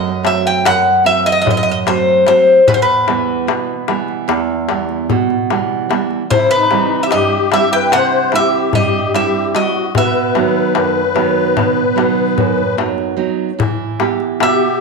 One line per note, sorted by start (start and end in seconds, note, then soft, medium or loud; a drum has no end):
0.00 0.62 F#2 medium
0.00 0.23 D#5 medium
0.23 0.88 F#3 soft
0.23 0.89 A3 soft
0.23 0.89 C4 medium
0.23 0.44 E5 medium
0.23 darbuka tek medium
0.46 0.66 G5 medium
0.46 darbuka tek soft
0.65 1.43 F#2 medium
0.65 1.03 F#5 loud
0.65 darbuka tek medium
1.04 1.69 F#3 soft
1.04 1.70 A3 soft
1.04 1.69 C4 medium
1.04 1.26 E5 loud
1.26 1.31 D#5 loud
1.26 darbuka tek soft
1.32 1.39 D#5 medium
1.42 2.23 F#2 medium
1.42 1.48 D#5 medium
1.47 1.56 D#5 medium
1.47 darbuka dum medium
1.57 1.62 D#5 medium
1.63 1.70 D#5 medium
1.71 1.78 D#5 medium
1.87 2.26 F#3 soft
1.87 2.26 A3 soft
1.87 2.27 C4 medium
1.87 2.24 C5 medium
1.87 darbuka tek medium
2.27 2.59 F#3 soft
2.27 2.59 A3 soft
2.27 2.59 C4 medium
2.27 2.67 C5 medium
2.27 darbuka tek medium
2.47 darbuka tek soft
2.67 3.45 E2 medium
2.67 2.74 B4 medium
2.67 darbuka dum loud
2.74 2.81 C5 medium
2.82 5.87 B4 medium
3.07 3.72 E3 soft
3.07 3.72 G3 soft
3.07 3.72 B3 medium
3.07 darbuka tek medium
3.47 4.26 B2 medium
3.47 darbuka tek medium
3.88 4.53 E3 medium
3.88 4.53 G3 soft
3.88 4.53 B3 medium
3.88 darbuka tek medium
4.08 darbuka tek soft
4.28 5.06 E2 medium
4.28 darbuka tek medium
4.69 5.33 E3 soft
4.69 5.34 G3 soft
4.69 5.34 B3 medium
4.69 darbuka tek medium
4.89 darbuka tek soft
5.10 5.88 B2 medium
5.10 darbuka dum medium
5.30 darbuka tek soft
5.50 5.88 E3 medium
5.50 5.89 G3 soft
5.50 5.90 B3 medium
5.50 darbuka tek medium
5.89 6.22 E3 soft
5.89 6.22 G3 soft
5.89 6.23 B3 soft
5.89 darbuka tek medium
6.11 darbuka tek soft
6.30 7.09 C3 medium
6.30 6.51 E4 medium
6.30 6.49 C5 medium
6.30 darbuka dum loud
6.51 7.03 D#4 medium
6.51 7.01 B4 medium
6.71 7.36 E3 medium
6.71 7.36 G3 medium
6.71 7.36 C4 medium
6.71 darbuka tek medium
7.03 7.11 G4 medium
7.03 7.11 E5 medium
7.11 7.90 G2 medium
7.11 7.51 G4 medium
7.11 7.49 D#5 medium
7.11 darbuka tek medium
7.52 8.17 G3 medium
7.52 8.17 C4 soft
7.52 8.17 E4 medium
7.52 7.71 E5 medium
7.52 darbuka tek medium
7.56 7.73 G4 medium
7.72 7.93 B4 medium
7.72 7.91 G5 loud
7.72 darbuka tek soft
7.92 8.72 C3 medium
7.92 8.34 F#5 loud
7.92 darbuka tek medium
7.97 8.33 C5 medium
8.32 8.97 G3 soft
8.32 8.98 C4 soft
8.32 8.98 E4 medium
8.32 8.75 E5 loud
8.32 darbuka tek medium
8.36 8.72 G4 medium
8.53 darbuka tek soft
8.73 9.52 G2 medium
8.73 9.13 G4 medium
8.73 9.15 D#5 medium
8.73 darbuka dum medium
8.94 darbuka tek soft
9.14 9.53 G3 soft
9.14 9.55 C4 soft
9.14 9.55 E4 medium
9.14 9.53 G4 medium
9.14 9.52 E5 medium
9.14 darbuka tek medium
9.55 9.87 G3 soft
9.55 9.88 C4 soft
9.55 9.88 E4 soft
9.55 9.93 F#4 medium
9.55 9.93 D#5 medium
9.55 darbuka tek medium
9.75 darbuka tek soft
9.95 10.36 B2 medium
9.95 12.76 B4 medium
9.95 12.76 E5 medium
9.95 darbuka dum loud
10.15 darbuka tek soft
10.35 11.01 D#3 medium
10.35 11.00 F#3 medium
10.35 11.00 B3 soft
10.35 darbuka tek medium
10.75 11.54 F#2 medium
10.75 darbuka tek medium
11.14 11.81 D#3 medium
11.14 11.80 F#3 soft
11.14 11.81 B3 soft
11.14 darbuka tek medium
11.56 12.35 B2 medium
11.56 darbuka tek medium
11.56 darbuka dum medium
11.77 darbuka tek soft
11.95 12.62 D#3 medium
11.95 12.61 F#3 soft
11.95 12.61 B3 soft
11.95 darbuka tek medium
12.18 darbuka tek soft
12.38 13.16 F#2 medium
12.38 darbuka dum medium
12.58 darbuka tek soft
12.77 13.16 F#3 medium
12.77 13.16 B3 soft
12.77 13.16 D#4 medium
12.77 darbuka tek medium
12.98 darbuka tek soft
13.17 13.50 F#3 soft
13.17 13.50 B3 soft
13.17 13.50 D#4 medium
13.59 14.38 E3 medium
13.59 darbuka dum loud
14.00 14.65 B3 soft
14.00 14.65 E4 soft
14.00 14.65 G4 medium
14.00 darbuka tek medium
14.20 darbuka tek soft
14.40 14.80 B2 medium
14.40 14.80 G4 medium
14.40 14.79 E5 medium
14.40 darbuka tek medium